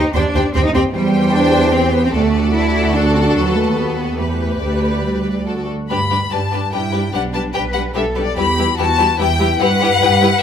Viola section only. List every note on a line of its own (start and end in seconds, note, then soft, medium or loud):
0.15 0.23 G4 medium
0.35 0.43 G4 medium
0.54 0.62 G4 medium
0.74 0.82 G4 medium
0.95 2.11 G4 medium
2.16 4.14 F#4 medium
4.19 5.43 G4 medium
5.48 5.68 F#4 soft
5.90 5.98 G3 soft
5.90 5.99 D4 soft
6.11 6.20 G3 soft
6.11 6.19 D4 soft
6.33 6.41 G3 soft
6.33 6.42 D4 soft
6.53 6.62 G3 soft
6.53 6.61 D4 soft
6.74 6.82 G3 soft
6.74 6.82 D4 soft
6.95 7.03 G3 soft
6.95 7.03 D4 soft
7.15 7.23 G3 soft
7.15 7.23 D4 soft
7.36 7.44 G3 soft
7.36 7.44 D4 soft
7.55 7.63 G3 soft
7.55 7.63 D4 soft
7.75 7.83 G3 soft
7.75 7.83 D4 soft
7.96 8.04 G3 soft
7.96 8.04 D4 soft
8.17 8.25 G3 soft
8.17 8.26 D4 soft
8.38 8.46 G3 medium
8.38 8.46 E4 medium
8.58 8.66 G3 soft
8.58 8.66 E4 soft
8.78 8.87 G3 soft
8.78 8.86 E4 medium
8.98 9.06 G3 soft
8.98 9.06 E4 soft
9.19 9.27 G3 medium
9.19 9.27 E4 soft
9.40 9.48 G3 medium
9.40 9.48 E4 medium
9.59 9.67 G3 medium
9.59 9.68 E4 medium
9.81 9.89 G3 medium
9.81 9.89 E4 medium
10.01 10.09 G3 medium
10.01 10.09 E4 medium
10.21 10.29 G3 medium
10.21 10.29 E4 medium